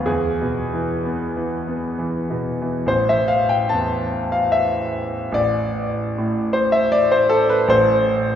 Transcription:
Already playing: D2 F3 B3 F5
0.06 E2 G#4
0.41 B2
0.73 E3
1.05 B3
1.36 E3
1.67 B3
1.99 E3
2.30 B2
2.62 E3
2.86 A1 C5
3.09 E5
3.28 F5
3.49 G5
3.69 E2 A5
4.32 F5
4.52 E5
5.32 A1 D5
6.18 A2
6.53 C5
6.72 E5
6.92 D5
7.12 C5
7.29 A4
7.50 B4
7.68 A1 C5

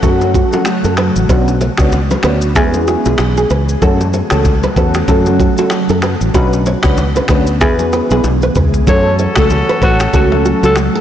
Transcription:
Already playing: C#3 F#3 A3 F#4
0.03 F#2 F#3 A3 C#4 F#4 A4, kick, low conga, shaker
0.21 low bongo, shaker
0.34 F#4, kick, shaker
0.52 F#3 A3 C#4 F#4, low bongo, shaker
0.65 finger snap, cross-stick, high bongo, shaker
0.84 F#2 A4, shaker
0.97 B4, finger snap, cross-stick, shaker
1.16 A1, shaker
1.29 B1 B3 C#4 D4 F#4 B4, kick, low conga, shaker
1.48 high bongo, shaker
1.61 C#5, low bongo, shaker
1.77 C#2 B3 C#4 D4 F#4, finger snap, kick, cross-stick, shaker
1.92 high bongo, low conga, shaker
2.10 B4, low bongo, shaker
2.23 D2 B3 C#4 D4 F#4 B4, finger snap, cross-stick, shaker
2.42 shaker
2.55 E2 G#3 B3 E4 G#4, kick, low conga, shaker
2.74 low bongo, shaker
2.88 F#4, cross-stick, shaker
3.05 B1 G#3 B3 E4 F#4 G#4, low bongo, shaker
3.18 B1, finger snap, cross-stick, high bongo, shaker
3.37 G#4, shaker
3.50 C#2 B4, shaker
3.69 shaker
3.81 F#2 C#3 F#3 A3 C#4 F#4 A4, kick, low conga, shaker
4.01 high bongo, shaker
4.13 C#5, low bongo, shaker
4.30 C#2 A3 C#4 F#4 A4, finger snap, cross-stick, shaker
4.45 kick, high bongo, low conga, shaker
4.63 B4, low bongo, shaker
4.76 E2 A3 C#4 F#4 A4 B4, kick, shaker
4.94 finger snap, cross-stick, shaker
5.08 F#2 A3 C#4 F#4 A4, kick, low conga, shaker
5.26 low bongo, shaker
5.40 F#4, kick, shaker
5.58 A3 C#4 F#4 A4, low bongo, shaker
5.70 finger snap, cross-stick, high bongo, shaker
5.89 F#2 A4, shaker
6.02 B4, finger snap, cross-stick, shaker
6.21 A1, shaker
6.34 B1 B3 C#4 D4 F#4 B4, kick, low conga, shaker
6.53 high bongo, shaker
6.66 C#5, low bongo, shaker
6.83 C#2 C#4 D4 F#4 B4, finger snap, kick, cross-stick, shaker
6.97 high bongo, low conga, shaker
7.16 B4, low bongo, shaker
7.28 D2 C#4 D4 F#4 B4, finger snap, kick, cross-stick, shaker
7.47 shaker
7.61 E2 B3 E4 G#4 B4, kick, low conga, shaker
7.79 low bongo, shaker
7.93 B4, cross-stick, shaker
8.11 B1 B3 E4 G#4 B4, low bongo, shaker
8.24 B1, high tom, high bongo, shaker
8.42 B4, shaker
8.55 C#2 B4, mid tom, shaker
8.74 floor tom, shaker
8.87 F#2 F#3 A3 C#4 F#4 A4 C#5, kick, low conga, shaker
9.19 C#5, shaker
9.36 C#2 A3 C#4 F#4 A4, finger snap, kick, cross-stick, shaker
9.50 high bongo, low conga, shaker
9.69 B4
9.82 A1 A3 C#4 F#4 A4 B4, kick, shaker
10.00 finger snap, cross-stick, shaker
10.13 C#2 A3 C#4 F#4 A4, kick, low conga, shaker
10.32 low bongo
10.45 F#4, shaker
10.63 C#2 A3 C#4 F#4 A4, low bongo, shaker
10.76 finger snap, cross-stick, high bongo, shaker
10.95 A4

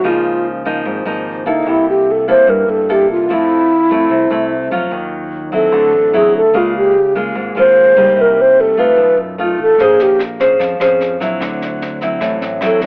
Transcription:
0.04 C#2 C#3 F3 A#3 D#4
0.08 F4
0.65 F3 A#3 D#4
0.85 G#1 G#2
1.05 G#1 F3 A#3 D#4
1.46 C#2 A#3 D#4 E4 A4
1.66 C2 C3 E4
1.89 G4
2.11 A4
2.28 A#3 E4 A4 C5
2.47 G2 A#4
2.68 G2 A4
2.89 A#3 E4 G4 A4
3.08 C2 F4
3.29 F2 F3 A3 C4 E4
3.33 E4
3.91 A3 C4 E4
4.10 C2 C3
4.30 C2 A3 C4 E4
4.71 F2 F#3 C#4 F4
4.91 D#2 D#3
5.52 F#3 C4 E4 A4
5.72 D2 D3
5.92 A1
6.13 F#3 C4 E4 G#4
6.33 D2 A4
6.53 C#2 C#3 G#3 A#3 F4
6.57 F4
6.77 G4
7.15 G#3 A#3 F4
7.35 G#1 G#2
7.55 G#1 G#3 A#3 F4
7.59 C5
7.96 C#2 G3 A#3 D#4
8.16 C2 C3
8.21 A#4
8.41 C5
8.61 A4
8.77 A3 D#4 F4 B4
8.96 B1 B2
9.17 F#2
9.38 A3 D#4 F4
9.43 F4
9.58 A1
9.62 A4
9.78 A#1 A#3 C#4 G#4 C5, kick, snare
9.84 G#4
9.99 G4, snare
10.19 cross-stick, snare
10.39 C#4 G#4 C5, kick, snare
10.59 F2 F3, kick, snare
10.80 F2 C#4 G#4 C5, cross-stick, snare
11.00 snare
11.20 A#1 F#3 C4 E4, kick, snare
11.40 D2 D3, kick, cross-stick, snare
11.61 snare
11.81 snare
12.01 F#3 C4 E4, kick, snare
12.21 A1 A2, kick, cross-stick, snare
12.41 A1, snare
12.61 F#3 C4 E4, cross-stick, snare
12.66 A4
12.81 D2, kick, snare

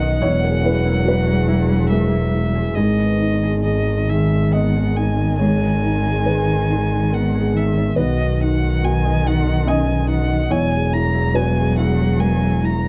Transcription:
Already playing: B1 D#3 C#4 D#4 F#4 C#5 D#5 F#5
0.02 D#5
0.22 E1 E2 F#3 E4 C#5
0.44 G#4 A#4
0.62 E4 B4
0.85 E4 A#4
1.05 F#4 B4
1.27 G#4
1.47 E4
1.69 G#4
1.90 G#3 A#4 E5
2.11 E4
2.34 E4
2.55 G#4
2.75 G#1 G#2 D#3 G#4 A#4 D#5
2.99 B3
3.20 D#4
3.43 G#4
3.63 G#4 D#5 D#6
4.09 D#3 G#4 E5
4.52 B3 D#5 F#5
4.76 G#4
4.97 D#4 G#5
5.39 G#2 G#4 C#5 G#5
5.84 D#4
6.07 G#4
6.26 G#4 B4
6.70 D#4 G#4
7.11 B3 A#4 F#5
7.35 G#4
7.54 D#3 E5
7.77 C#5
7.96 B1 D#3 F#4 B4 D#5
8.20 D#5
8.41 D#4 F#5
8.84 F#4 F#5 G#5
9.05 D#5
9.25 D#4 F#5
9.46 D#5
9.66 C#4 D#5 G#5
10.08 D#4 F#5
10.30 D#5
10.49 E1 E2 F#3 E4 C#5 G#5
10.72 G#4
10.92 E4 A#5
11.14 E4
11.34 B3 F#4 B4 G#5
11.56 G#4
11.77 E4 F#5
11.99 G#4
12.20 G#3 A#4 G#5
12.43 E4
12.63 E4 A#5

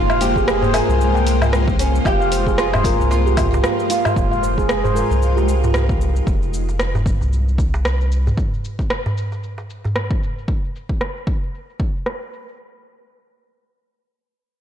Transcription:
Already playing: F1 G#3 A#3 F4 C5
0.10 F5, cabasa, low woodblock
0.21 G4 C5, open hi-hat, cabasa
0.36 G#4, kick, darbuka ka, cabasa
0.47 G#4, cross-stick, cabasa
0.62 C5, darbuka ka, darbuka dum, cabasa
0.73 G#4 A#4, open hi-hat, cabasa, low woodblock
0.88 C2, darbuka ka, cabasa
1.01 cabasa
1.15 G5, darbuka ka, cabasa
1.27 open hi-hat, darbuka tek, cabasa
1.41 darbuka ka, darbuka dum, cabasa, low woodblock
1.53 cross-stick, cabasa
1.68 kick, cabasa
1.79 C#4, open hi-hat, cabasa
1.95 cabasa
2.05 F1 F4 G4, kick, cabasa, low woodblock
2.21 F5, cabasa
2.32 C5, open hi-hat, cabasa
2.47 G#4, kick, darbuka ka, cabasa
2.58 F4 G#4, cross-stick, cabasa
2.73 C5, darbuka ka, darbuka tek, darbuka dum, cabasa, low woodblock
2.84 A#4, kick, open hi-hat, cabasa
3.00 C2, darbuka ka, cabasa
3.11 F4, darbuka tek, cabasa
3.26 G4, cabasa
3.37 kick, open hi-hat, darbuka tek, darbuka dum, cabasa, low woodblock
3.53 darbuka tek, cabasa
3.64 F4, cross-stick, cabasa
3.80 cabasa
3.90 F4, open hi-hat, darbuka tek, cabasa
4.05 darbuka dum, cabasa, low woodblock
4.16 F1 G#3 D#4 F4, kick, cabasa
4.32 F5, cabasa
4.43 C5, cabasa
4.58 G#4, kick, darbuka ka, cabasa
4.69 G#4, cross-stick, cabasa
4.84 C5, darbuka ka, darbuka dum, cabasa
4.95 A#4, cabasa
5.11 C2, darbuka ka, cabasa
5.22 cabasa
5.37 G4, darbuka ka, cabasa
5.49 cabasa
5.64 darbuka ka, darbuka dum, cabasa
5.74 cross-stick, cabasa
5.89 kick, cabasa
6.01 cabasa
6.16 cabasa
6.27 F1, kick, cabasa
6.42 cabasa
6.54 cabasa
6.69 darbuka ka, cabasa
6.79 cross-stick, cabasa
6.95 darbuka ka, darbuka tek, darbuka dum, cabasa
7.06 kick, cabasa
7.21 C2, darbuka ka, cabasa
7.33 cabasa
7.48 cabasa
7.58 kick, darbuka tek, cabasa
7.74 darbuka tek, cabasa
7.85 cross-stick, cabasa
8.01 cabasa
8.12 cabasa
8.27 darbuka dum, cabasa
8.38 kick, cabasa
8.54 cabasa
8.65 cabasa
8.79 kick, darbuka ka, cabasa
8.90 cross-stick, cabasa
9.06 darbuka ka, darbuka dum, cabasa
9.18 cabasa
9.32 darbuka ka, cabasa
9.44 cabasa
9.58 darbuka ka, cabasa
9.70 cabasa
9.85 darbuka ka, darbuka dum, cabasa
9.96 cross-stick, cabasa
10.11 kick, cabasa
10.23 cabasa
10.38 cabasa
10.48 kick, cabasa
10.65 cabasa
10.76 cabasa
10.89 kick, cabasa
11.01 cross-stick, cabasa
11.17 cabasa
11.27 kick, cabasa
11.43 cabasa
11.55 cabasa
11.70 cabasa
11.80 kick, cabasa
11.96 cabasa
12.06 cross-stick, cabasa
12.22 cabasa
12.33 cabasa
12.49 cabasa

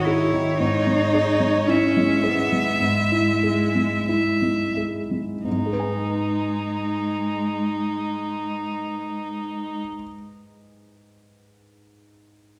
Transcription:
Already playing: G#2 D#3 D#4 G#4
0.05 E4 G#4 C#5
0.33 D#3
0.59 G#2 D#4
0.87 G#3
1.14 G#4
1.40 G#3
1.67 C#4 E4 E5
1.97 G#3
2.24 B3 G#4
2.52 G#3
2.80 G#2 G#3
3.12 E4
3.43 G#4
3.75 G#3
4.09 E4 E5
4.42 G#3
4.77 G#4
5.11 G#3
5.45 G#2 G#3 D#4
5.51 G#3
5.59 D#4
5.66 G#4
5.73 B4
5.80 G#5

